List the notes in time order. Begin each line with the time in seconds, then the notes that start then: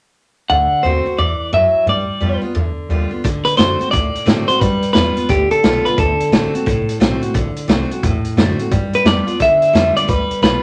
0.50 D2 D3 F#5
0.72 muted upright bass stroke
0.83 D#2 D3 A3 C4 F#4 C5
1.06 C4 F#4
1.18 E2 E3 D5
1.40 muted upright bass stroke
1.52 F#2 F#3 E5
1.73 muted upright bass stroke
1.86 G2 G3 D5
2.08 muted upright bass stroke
2.20 F2 G3 B3 F4
2.42 B3 F4
2.55 E2 D3
2.76 muted upright bass stroke
2.89 D#2 G3 B3 F4
3.11 B3 F4, muted upright bass stroke
3.24 D2 D3, kick, closed hi-hat
3.45 B4, muted upright bass stroke, closed hi-hat
3.57 F#2 D3 A3 C4 F#4 C5, snare, closed hi-hat
3.79 C4 F#4, muted upright bass stroke, closed hi-hat
3.91 D2 A2 D5, kick, closed hi-hat
4.14 muted upright bass stroke, closed hi-hat
4.26 A2 D3 A3 C4 F#4, snare, closed hi-hat
4.48 C4 F#4 C5, muted upright bass stroke, closed hi-hat
4.60 G2 G3 B4, kick, closed hi-hat
4.82 muted upright bass stroke, closed hi-hat
4.93 E2 G3 B3 F4 B4, snare, closed hi-hat
5.16 B3 F4, muted upright bass stroke, closed hi-hat
5.29 D2 D3 G4, kick, closed hi-hat
5.50 A4, muted upright bass stroke, closed hi-hat
5.64 B1 G3 B3 F4, snare, closed hi-hat
5.85 B3 F4 B4, closed hi-hat
5.98 D2 D3 A4, kick, closed hi-hat
6.20 closed hi-hat
6.31 A1 D3 A3 C4 F#4, snare, closed hi-hat
6.52 C4 F#4, muted upright bass stroke, closed hi-hat
6.66 C2 A2, kick, closed hi-hat
6.89 closed hi-hat
7.00 B1 D3 A3 C4 F#4, snare, closed hi-hat
7.22 C4 F#4, muted upright bass stroke, closed hi-hat
7.34 A1 D3, kick, closed hi-hat
7.55 muted upright bass stroke, closed hi-hat
7.68 C2 D3 A3 C4 F#4, snare, closed hi-hat
7.91 C4 F#4, closed hi-hat
8.03 E2 A2, kick, closed hi-hat
8.24 muted upright bass stroke, closed hi-hat
8.37 F#2 D3 A3 C4 F#4, snare, closed hi-hat
8.59 C4 F#4, closed hi-hat
8.71 G2 G3, kick, closed hi-hat
8.92 B4, muted upright bass stroke, closed hi-hat
9.05 F2 G3 B3 F4 D5, snare, closed hi-hat
9.27 B3 F4, closed hi-hat
9.40 D3 E5, kick, closed hi-hat
9.61 muted upright bass stroke, closed hi-hat
9.73 F2 G3 B3 F4, snare, closed hi-hat
9.96 D5, muted upright bass stroke, closed hi-hat
10.08 D2 G3 B4, kick, closed hi-hat
10.29 muted upright bass stroke, closed hi-hat
10.42 B1 G3 B3 F4 B4, snare, closed hi-hat